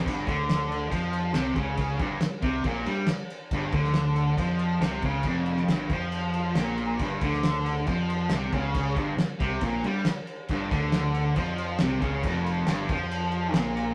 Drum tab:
CC |x-x-x-x-x-x-x-x-|x-x-x-x-x-x-x-x-|x-x-x-x-x-x-x-x-|x-x-x-x-x-x-x-x-|
SD |----o-------o---|----o-------o---|---oo-------o---|---oo-------o---|
BD |o-o-----o-----o-|o-o---o-o-------|o-o-----o-----o-|o-----o---------|

CC |x-x-x-x-x-x-x-x-|x-x-x-x-x-x-x-x-|x-x-x-x-x-x-x-x-|x-x-x-x-x-x-x-x-|
SD |---oo-------o---|----o-------o---|----o-------o---|----o-------o---|
BD |o-o-----o-----o-|o-o---o-o-------|o-o-----o-----o-|o-----o---------|